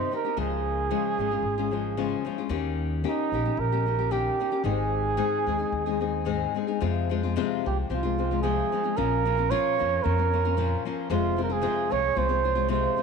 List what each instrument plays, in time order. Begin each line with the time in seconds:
Already playing: nylon-string guitar C3 D#3 C4 D#4 G4, trumpet C5
0.11 nylon-string guitar D#3 C4 D#4 G4, trumpet A#4
0.25 nylon-string guitar C4 D#4 G4
0.37 upright bass C#2, nylon-string guitar C#3 F3 G#3 C#4 F4, trumpet G#4
0.91 nylon-string guitar C#3 F3 G#3 C#4 F4
1.18 upright bass G#1, nylon-string guitar F3 G#3 C#4 F4
1.31 nylon-string guitar G#3 C#4 F4
1.43 upright bass G#1
1.58 nylon-string guitar G#3 C#4 F4
1.71 nylon-string guitar F3 G#3 C#4 F4
1.97 nylon-string guitar C#3 F3 G#3 C#4 F4
2.25 nylon-string guitar F3 G#3 C#4 F4
2.38 nylon-string guitar G#3 C#4 F4
2.49 upright bass D#2, nylon-string guitar D#3 A#3 C#4 G4
3.04 nylon-string guitar D#3 A#3 C#4 G4, trumpet D#4
3.32 upright bass A#1, nylon-string guitar D#3 A#3 C#4 G4
3.45 nylon-string guitar A#3 C#4 G4
3.57 upright bass A#1, trumpet A#4
3.72 nylon-string guitar A#3 C#4 G4
3.86 nylon-string guitar D#3 A#3 C#4 G4
3.99 nylon-string guitar A#3 C#4 G4
4.11 nylon-string guitar D#3 A#3 C#4 G4, trumpet G4
4.40 nylon-string guitar D#3 A#3 C#4 G4
4.52 nylon-string guitar A#3 C#4 G4
4.64 upright bass G#1, nylon-string guitar G#2 D#3 G#3 C4 D#4 G#4, trumpet G#4
5.17 nylon-string guitar G#2 D#3 G#3 C4 D#4 G#4
5.47 upright bass D#2, nylon-string guitar G#3 C4 D#4 G#4
5.59 nylon-string guitar G#3 C4 D#4 G#4
5.72 upright bass D#2
5.86 nylon-string guitar G#3 C4 D#4 G#4
6.01 nylon-string guitar G#3 C4 D#4 G#4
6.25 nylon-string guitar G#2 D#3 G#3 C4 D#4 G#4
6.55 nylon-string guitar G#3 C4 D#4 G#4
6.67 nylon-string guitar G#3 C4 D#4 G#4
6.81 nylon-string guitar F2 C3 F3 G#3 C4 F4, upright bass F2
7.09 nylon-string guitar F3 G#3 C4 F4
7.23 nylon-string guitar F3 G#3 C4 F4
7.36 nylon-string guitar F2 C3 F3 G#3 C4 F4
7.65 upright bass C2, nylon-string guitar F3 G#3 C4 F4, trumpet G4
7.90 upright bass C2, nylon-string guitar F3 G#3 C4 F4, trumpet F4
8.03 nylon-string guitar F3 G#3 C4 F4
8.18 nylon-string guitar F3 G#3 C4 F4
8.31 nylon-string guitar F3 G#3 C4 F4
8.42 nylon-string guitar F2 C3 F3 G#3 C4 F4, trumpet G#4
8.72 nylon-string guitar F3 G#3 C4 F4
8.84 nylon-string guitar F3 G#3 C4 F4
8.96 upright bass A#1, nylon-string guitar A#2 F3 A#3 C#4 F4, trumpet A#4
9.25 nylon-string guitar F3 A#3 C#4 F4
9.37 nylon-string guitar A#3 C#4 F4
9.51 nylon-string guitar A#2 F3 A#3 C#4 F4, trumpet C#5
9.79 upright bass F2, nylon-string guitar F3 A#3 C#4 F4
10.03 upright bass F2, nylon-string guitar F3 A#3 C#4 F4, trumpet A#4
10.18 nylon-string guitar A#3 C#4 F4
10.33 nylon-string guitar F3 A#3 C#4 F4
10.45 nylon-string guitar A#3 C#4 F4
10.57 nylon-string guitar A#2 F3 A#3 C#4 F4
10.85 nylon-string guitar F3 A#3 C#4 F4
11.10 upright bass F1, nylon-string guitar F2 C3 F3 G#3 C4 F4, trumpet F4
11.37 nylon-string guitar F3 G#3 C4 F4
11.43 trumpet A#4
11.49 nylon-string guitar F3 G#3 C4 F4, trumpet G#4
11.61 nylon-string guitar F2 C3 F3 G#3 C4 F4
11.90 upright bass C2, nylon-string guitar F3 G#3 C4 F4, trumpet C#5
12.15 upright bass C2, nylon-string guitar F3 G#3 C4 F4, trumpet C5
12.29 nylon-string guitar F3 G#3 C4 F4
12.44 nylon-string guitar F3 G#3 C4 F4
12.55 nylon-string guitar F3 G#3 C4 F4
12.68 nylon-string guitar F2 C3 F3 G#3 C4 F4, trumpet C5
12.96 nylon-string guitar F3 G#3 C4 F4